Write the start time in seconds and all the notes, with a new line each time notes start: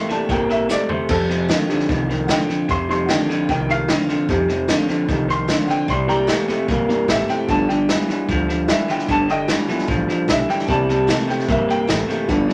Already playing: C3
0.08 C3 E3 A3 A#3 C4 D4 E4 A5, muted upright bass stroke, snare
0.29 G1 A2 C3 A#3 G5, kick, snare
0.49 C3 A#3 E5, snare
0.69 G2 C3 A3 D5, snare, hi-hat pedal
0.89 C3 A3 C5, muted upright bass stroke, floor tom
1.09 F2 C3 A4, kick, snare, crash
1.29 F2 C3, snare
1.49 F2 D3 D#3 A3 C4 F4, snare, hi-hat pedal
1.68 F2 D3 G3 A3 C4 D#4 F4, muted upright bass stroke, snare
1.79 snare
1.89 C2 F2 C3 D#3, kick, snare
2.09 F2 D#3, snare
2.27 F2 D3 D#3 A3 C4 F4 F#5, snare, hi-hat pedal
2.31 G5
2.49 F2 D3 C4 F4, muted upright bass stroke, snare
2.68 F2 C3 C6, kick, snare
2.88 F2 C3 G3 A3 D#4 C6, snare
3.06 F2 D3 D#3 A3 C4 F#5, snare, hi-hat pedal
3.10 F4 G5
3.29 F2 D3 C4 F4, muted upright bass stroke, snare
3.49 C2 F2 C3 D#3 G5, kick, snare
3.68 F2 D#3 G3 A3 D#4 F5, snare
3.88 F2 D3 D#3 A3 C4 F4, snare, hi-hat pedal
4.09 F2 D3 C4 F4, muted upright bass stroke, snare
4.29 F2 C3 G3 A3 D#4, kick, snare
4.48 F2 C3, snare
4.68 F2 D3 D#3 A3 C4 F4, snare, hi-hat pedal
4.88 F2 D3 C4 F4, muted upright bass stroke, snare
5.08 C2 F2 C3 D#3 G3 A3 D#4, kick, snare
5.28 F2 D#3 C6, snare
5.48 F2 D3 D#3 A3 C4 F4, snare, hi-hat pedal
5.66 F2 D3 C4 F4 F#5, muted upright bass stroke, snare
5.71 G5
5.88 C2 C3 G3 C6, kick, snare
6.07 C3 E3 G3 A#3 D4 G5 A#5, snare
6.27 C3 E3 A3 A#3 C4 E4, snare, hi-hat pedal
6.48 C3 A3 C4 E4, muted upright bass stroke, snare
6.68 A#1 G2 C3 A#3, kick, snare
6.88 C3 E3 A#3 D4, muted upright bass stroke, snare
7.08 A1 C3 E3 A3 A#3 C4 E4 E5, snare, hi-hat pedal
7.28 C3 A3 C4 E4 G5, muted upright bass stroke, snare
7.47 G1 G2 D3 F3 G3 A3 B3 A5, kick, snare
7.69 G2 D3 G5, snare
7.89 G2 E3 G3 B3 F4, snare, hi-hat pedal
8.08 G2 E3 B3 F4, muted upright bass stroke, snare
8.29 D2 G2 D3 F3, kick, snare
8.48 G2 F3, snare
8.68 G2 E3 G3 B3 F4 E5, snare, hi-hat pedal
8.88 G2 E3 B3 F4 G5, muted upright bass stroke, snare
8.99 snare
9.08 G1 G2 D3 G3 A5, kick, snare
9.28 G2 D3 D#5 G5, snare
9.48 G2 E3 G3 B3 F4, snare, hi-hat pedal
9.68 G2 E3 F3 A3 B3 F4, muted upright bass stroke, snare
9.78 snare
9.88 A1 G2 A2 F3, kick, snare
10.08 G2 F3, muted upright bass stroke, snare
10.28 B1 G2 D3 E3 E5, snare, hi-hat pedal
10.48 G2 E3 G5, snare
10.59 snare
10.65 C2 C3 E3 G3 A#3 D4 G#5, kick, snare
10.70 A5
10.89 C3 G3, snare
11.07 C3 E3 A3 A#3 C4 E4, snare, hi-hat pedal
11.28 C3 A3 C4 E4 G5, muted upright bass stroke, snare
11.39 snare
11.48 A#1 G2 C3 A#3 E5, kick, snare
11.68 C3 A#3 G5, muted upright bass stroke, snare
11.87 A1 C3 E3 A3 A#3 C4 E4, snare, hi-hat pedal
12.08 C3 A3, muted upright bass stroke, snare
12.27 G1 G2 D3 F3 G3 A3 B3, kick, snare
12.48 G2 D3, snare